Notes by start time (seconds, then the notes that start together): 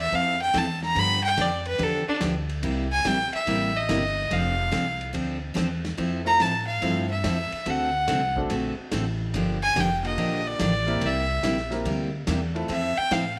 Already playing: E2
0.00 E5
0.12 F2 F3 C4 E4 A4 F5, kick
0.42 G5
0.53 E2 F3 C4 E4 A4, kick, snare, hi-hat pedal, ride
0.58 A5
0.83 A#5, snare
0.95 G2 D3 F3 B3 D4 G4, kick, ride
0.99 B5
1.24 G5
1.37 F2 D3 F3 B3 D4 G4, kick, snare, hi-hat pedal, ride
1.41 D5
1.65 B4, ride
1.78 E2 D3 F3 B3 D4 G4, kick, ride
1.83 A4
2.07 D4, muted upright bass stroke
2.21 D2 D3 F3 B3 D4 G4, kick, snare, hi-hat pedal, ride
2.49 ride
2.63 C2 C3 G3 A#3 E4 G4, kick, ride
2.92 G#5
3.04 A#1 C3 G3 A#3 E4 G4 G5, kick, snare, hi-hat pedal, ride
3.33 E5, muted upright bass stroke, ride
3.46 A1 C3 G3 A#3 E4 G4, kick, ride
3.76 D#5
3.89 G1 C3 G3 A#3 E4 G4, kick, snare, hi-hat pedal, ride
4.30 F1 F3 C4 D4 A4 F5, kick, ride
4.71 C2 F3 C4 D4 A4, kick, snare, hi-hat pedal, ride
5.01 ride
5.13 D2 F3 C4 D4 A4, kick, ride
5.54 E2 F3 C4 D4 A4, kick, snare, hi-hat pedal, ride
5.85 snare, ride
5.97 F2 F3 C4 E4 A4, kick, ride
6.25 A3 C4 E4 F4 A4 A#5
6.39 A2 F3 C4 E4 A4 A5, kick, snare, hi-hat pedal, ride
6.67 F5
6.81 G2 F3 A3 C4 E4 F4 A4, kick, ride
7.11 E5
7.24 F2 F3 C4 E4 A4, kick, snare, hi-hat pedal, ride
7.52 muted upright bass stroke, ride
7.66 D2 D3 A3 C4 F#4 A4, kick, ride
7.70 F#5
8.08 C2 D3 A3 C4 F#4 A4, kick, snare, hi-hat pedal, ride
8.36 A3 C4 D4 F#4 A4, kick
8.50 A#1 D3 A3 C4 F#4 A4, kick, ride
8.77 muted upright bass stroke
8.92 A1 D3 A3 C4 F#4 A4, kick, snare, hi-hat pedal, ride
9.34 G1 D3 F3 A#3 D4 G4, kick, ride
9.62 G#5
9.75 F1 D3 F3 A#3 D4 G4, kick, snare, hi-hat pedal, ride
9.80 G5
10.03 D3 A#3 F4 G4 A#4 D#5, ride
10.17 A#1 D3 F3 A#3 D4 G4, kick, ride
10.47 D5
10.59 A1 D3 F3 A#3 D4 G4, kick, snare, hi-hat pedal, ride
10.87 A#3 C4 E4 G4 A#4, ride
11.01 C2 C3 G3 A#3 E4 G4, kick, ride
11.06 E5
11.43 A#1 C3 G3 A#3 E4 G4, kick, snare, hi-hat pedal, ride
11.57 snare
11.70 A#3 C4 E4 G4 A#4, snare, ride
11.85 D2 C3 G3 A#3 E4 G4, kick, ride
12.27 E2 C3 G3 A#3 E4 G4, kick, snare, hi-hat pedal, ride
12.54 A3 C4 E4 F4 A4, ride
12.68 F2 F3 C4 E4 A4 E5, kick, ride
12.97 G5, muted upright bass stroke
13.11 A2 F3 C4 E4 A4 F5, kick, snare, hi-hat pedal, ride